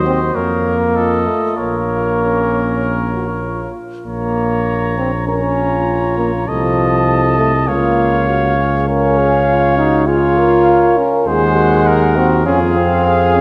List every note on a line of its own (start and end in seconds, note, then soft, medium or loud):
0.00 0.33 D#2 medium
0.00 0.68 F#4 medium
0.00 0.37 C5 medium
0.00 0.36 D#5 medium
0.07 0.20 C4 medium
0.35 1.27 F2 medium
0.35 1.28 A#3 medium
0.35 0.98 A#4 medium
0.35 0.74 C#5 soft
0.94 2.09 F4 soft
0.94 1.56 A4 soft
0.94 1.59 D#5 soft
1.27 1.57 A3 medium
1.57 3.71 A#1 soft
1.57 3.71 A#3 medium
1.57 3.71 A#4 soft
1.57 3.75 C#5 soft
2.19 3.09 C#4 soft
3.13 3.27 F#4 soft
3.44 4.05 F4 soft
4.06 6.44 A#1 medium
4.06 4.93 A#3 medium
4.06 5.24 C#5 medium
4.06 5.23 A#5 soft
4.98 5.11 C4 medium
5.27 6.16 C#4 medium
5.27 5.41 A#4 medium
5.27 6.50 C#5 soft
5.27 6.46 A#5 medium
5.58 6.46 F4 medium
6.17 6.31 A#3 medium
6.47 7.69 C2 medium
6.47 7.36 F3 medium
6.47 7.07 A4 medium
6.47 7.70 D#5 medium
6.47 7.69 A5 medium
7.07 7.67 A4 medium
7.38 7.52 A3 medium
7.67 10.99 C#2 medium
7.67 8.56 A#3 medium
7.67 8.27 F4 medium
7.67 8.88 C#5 medium
7.67 8.86 F5 medium
8.28 8.57 F#4 medium
8.58 8.90 G#4 medium
8.87 9.74 C#4 medium
8.87 9.20 A#4 medium
8.87 10.05 C#5 medium
8.87 10.04 F5 medium
9.18 9.48 G#4 medium
9.48 9.77 F4 medium
9.78 10.09 D#4 medium
9.78 10.10 F#4 medium
10.07 10.99 F4 medium
10.07 10.39 G#4 medium
10.07 10.97 C#5 medium
10.07 10.98 F5 medium
10.38 11.29 A#4 medium
10.97 11.27 C#4 medium
11.26 12.47 D#2 medium
11.26 12.18 G#3 loud
11.26 11.57 G#4 medium
11.26 11.89 C5 medium
11.26 12.41 F#5 medium
11.56 11.85 F#4 medium
11.86 11.99 G#4 medium
11.86 12.46 A#4 medium
12.16 12.45 C4 medium
12.16 12.45 F#4 medium
12.46 13.41 F2 medium
12.46 12.59 C#4 medium
12.46 12.84 F4 medium
12.46 13.04 G#4 medium
12.46 13.41 F5 medium
12.76 13.36 C4 medium
13.05 13.41 G#4 medium
13.34 13.41 C#4 medium